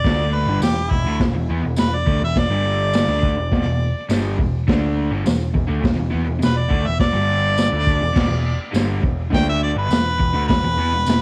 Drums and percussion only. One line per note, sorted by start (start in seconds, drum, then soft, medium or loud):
0.04 kick loud
0.04 snare loud
0.04 open hi-hat soft
0.62 snare loud
0.62 open hi-hat medium
0.62 tambourine loud
0.91 kick medium
1.19 kick loud
1.19 snare loud
1.19 open hi-hat medium
1.76 snare loud
1.76 open hi-hat medium
1.76 tambourine loud
2.07 kick medium
2.35 kick loud
2.35 snare loud
2.35 open hi-hat medium
2.94 snare loud
2.94 open hi-hat medium
2.94 tambourine medium
3.23 kick medium
3.51 kick loud
3.51 snare loud
3.51 open hi-hat medium
4.09 snare loud
4.09 open hi-hat medium
4.09 tambourine loud
4.39 kick loud
4.68 kick loud
4.68 snare loud
4.68 open hi-hat soft
5.26 snare loud
5.26 open hi-hat medium
5.26 tambourine medium
5.55 kick medium
5.83 kick loud
5.83 snare loud
5.83 open hi-hat medium
6.42 snare loud
6.42 open hi-hat medium
6.42 tambourine loud
6.71 kick medium
6.99 kick loud
6.99 snare loud
6.99 open hi-hat medium
7.57 snare loud
7.57 open hi-hat medium
7.57 tambourine loud
7.87 kick medium
8.16 kick loud
8.16 snare loud
8.16 crash loud
8.74 snare loud
8.74 open hi-hat medium
8.74 tambourine loud
9.04 kick medium
9.33 kick loud
9.33 snare loud
9.33 open hi-hat medium
9.91 snare loud
9.91 open hi-hat medium
9.91 tambourine medium
10.20 kick medium
10.49 kick loud
10.49 snare loud
10.49 open hi-hat medium
11.06 snare loud
11.06 open hi-hat medium
11.06 tambourine loud